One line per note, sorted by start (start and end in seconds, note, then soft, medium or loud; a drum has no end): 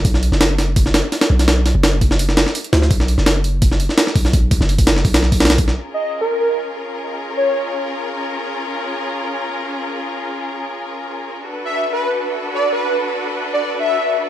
0.05 0.31 B1 loud
0.05 kick loud
0.05 open hi-hat medium
0.14 snare soft
0.23 open hi-hat medium
0.32 1.02 F#1 medium
0.32 snare soft
0.41 snare loud
0.41 open hi-hat medium
0.58 snare soft
0.58 open hi-hat medium
0.76 kick loud
0.76 open hi-hat medium
0.86 snare soft
0.94 snare loud
0.94 open hi-hat medium
1.12 snare soft
1.12 open hi-hat medium
1.21 snare medium
1.21 open hi-hat medium
1.30 1.74 B1 medium
1.39 snare soft
1.39 open hi-hat medium
1.48 snare loud
1.48 open hi-hat medium
1.66 snare soft
1.66 open hi-hat medium
1.75 2.45 F#1 medium
1.83 snare loud
1.83 open hi-hat medium
2.01 kick loud
2.01 open hi-hat medium
2.11 snare medium
2.19 open hi-hat medium
2.29 snare soft
2.37 snare loud
2.37 open hi-hat medium
2.47 snare medium
2.55 open hi-hat medium
2.64 closed hi-hat soft
2.73 2.89 D2 medium
2.73 snare loud
2.73 open hi-hat medium
2.82 snare medium
2.91 3.16 B1 loud
2.91 kick loud
2.91 open hi-hat medium
3.00 snare soft
3.08 open hi-hat medium
3.18 3.88 F#1 medium
3.18 snare soft
3.26 snare loud
3.26 open hi-hat medium
3.44 open hi-hat medium
3.62 kick loud
3.62 open hi-hat medium
3.72 snare soft
3.80 open hi-hat medium
3.89 snare soft
3.98 snare loud
3.98 open hi-hat medium
4.07 snare soft
4.16 4.59 B1 medium
4.16 kick medium
4.16 open hi-hat medium
4.25 snare soft
4.33 kick loud
4.33 open hi-hat medium
4.51 kick loud
4.51 open hi-hat medium
4.61 5.04 F#1 medium
4.61 snare soft
4.69 open hi-hat medium
4.79 kick medium
4.79 open hi-hat medium
4.87 snare loud
4.87 open hi-hat medium
4.96 snare soft
5.05 5.75 B1 medium
5.05 kick medium
5.05 open hi-hat medium
5.14 snare loud
5.14 open hi-hat medium
5.23 snare soft
5.32 kick medium
5.32 open hi-hat medium
5.40 snare medium
5.40 open hi-hat medium
5.45 snare medium
5.45 open hi-hat medium
5.50 snare loud
5.50 open hi-hat medium
5.58 kick medium
5.58 open hi-hat medium
5.68 snare soft
5.77 11.44 C#4 medium
5.77 11.44 F4 medium
5.77 11.44 G#4 medium
5.77 11.44 A#4 medium
5.94 6.16 D#5 medium
6.21 6.37 A#4 medium
6.39 6.60 A#4 medium
7.37 7.73 C#5 medium
11.48 14.29 D4 medium
11.48 14.29 F#4 medium
11.48 14.29 A4 medium
11.48 14.29 B4 medium
11.65 11.87 E5 medium
11.93 12.09 B4 medium
12.55 12.71 D5 medium
12.73 12.94 B4 medium
13.54 13.59 D5 medium
13.62 13.68 D5 medium
13.80 14.07 E5 medium